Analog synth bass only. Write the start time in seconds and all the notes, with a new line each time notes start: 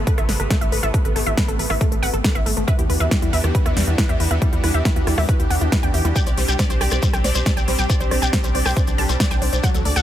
0.18 A1
0.29 A1
0.40 A1
0.62 A1
0.72 A1
0.83 A1
1.05 A1
1.16 A1
1.27 A1
1.48 A1
1.59 A1
1.70 A1
1.92 A1
2.03 A1
2.14 A1
2.35 A1
2.46 A1
2.57 A1
2.79 E2
2.90 E2
3.01 E2
3.22 E2
3.33 E2
3.44 E2
3.66 E2
3.77 E2
3.87 E2
4.09 E2
4.20 E2
4.31 E2
4.53 E2
4.64 E2
4.74 E2
4.96 E2
5.07 E2
5.18 E2
5.40 E2
5.50 E2
5.61 E2
5.83 E2
5.94 E2
6.05 E2
6.26 C2
6.37 C2
6.48 C2
6.70 C2
6.81 C2
6.92 C2
7.14 C2
7.24 C2
7.35 C2
7.57 C2
7.68 C2
7.79 C2
8.01 C2
8.11 C2
8.22 C2
8.44 C2
8.55 C2
8.66 C2
8.88 C2
8.98 C2
9.09 C2
9.31 C2
9.42 C2
9.53 C2
9.74 D2
9.85 D2
9.96 D2